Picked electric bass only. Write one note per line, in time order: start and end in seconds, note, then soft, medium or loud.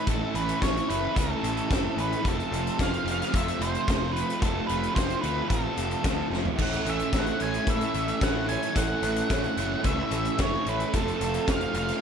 0.07 0.23 A1 medium
0.34 0.51 A1 loud
0.62 0.79 A1 medium
0.90 1.06 F#1 medium
1.16 1.33 C#2 medium
1.43 1.59 A1 medium
1.70 1.87 F#1 medium
1.97 2.14 A1 medium
2.25 2.41 F1 medium
2.52 2.68 F1 loud
2.79 2.95 F1 medium
3.05 3.22 F1 medium
3.34 3.50 F2 medium
3.59 3.76 F1 medium
3.89 4.22 F1 medium
4.42 4.59 F1 medium
4.70 4.86 F1 medium
4.97 5.13 F1 medium
5.24 5.40 D2 medium
5.50 5.67 A1 medium
5.77 5.94 F1 medium
6.05 6.21 D2 medium
6.30 6.47 F1 medium
6.59 6.76 A1 medium
6.85 7.02 A1 loud
7.13 7.30 A1 loud
7.41 7.57 A1 medium
7.67 7.84 A2 medium
7.94 8.11 A1 medium
8.21 8.55 A1 medium
8.76 8.93 A1 medium
9.02 9.20 A1 loud
9.30 9.47 A1 medium
9.57 9.74 F#1 medium
9.85 10.02 C#2 medium
10.11 10.28 A1 medium
10.39 10.56 F#1 medium
10.66 10.83 A1 medium
10.94 11.10 F1 medium
11.21 11.37 F1 loud
11.48 11.65 F1 medium
11.74 11.91 F1 medium